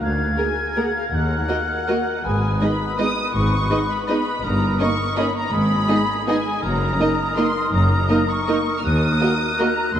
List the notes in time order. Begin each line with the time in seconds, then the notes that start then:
0.00 D2 A#4 F5 G#6
0.37 A#3 G#4 A#4 G#5
0.76 A#3 G#4 A#4 F#5
0.96 F5
1.13 D#2 F#5 F#6
1.48 A#3 F#4 A#4 D#5
1.88 A#3 F#4 A#4 D#5
2.24 G#1 G#2 B4 G#5 D#6
2.61 G#3 B3 D#4 B4 D#5 B5
2.98 G#3 B3 D#4 B4 D#5 D#6
3.34 G#1 G#2 C#6
3.70 G#3 B3 D#4 B4 D#5
3.90 B5
4.08 G#3 B3 D#4 B4 D#5 B5
4.44 G1 G2 A#4 A#5 D#6
4.79 A#3 C#4 D#4 A#4 D#5 C#6
5.16 A#3 C#4 D#4 A#4 D#5 B5
5.36 A#5
5.52 G#1 G#2 G#4 B5
5.88 G#3 B3 D#4 G#4 D#5
6.27 G#3 B3 D#4 G#4 D#5 G#5
6.62 F#1 F#2 A#4 A#5 D#6
6.99 A#3 D#4 A#4 D#5
7.36 A#3 D#4 A#4 D#5 C6
7.72 F#1 F#2 A#5
8.09 A#3 D#4 A#4 D#5
8.29 C#6
8.47 A#3 D#4 A#4 D#5
8.78 F6
8.84 D#2 A#4 D#6 F#6
9.19 A#3 F#4 A#4 D#5
9.58 A#3 F#4 A#4 D#5 A#5
9.95 D#2 A4 C6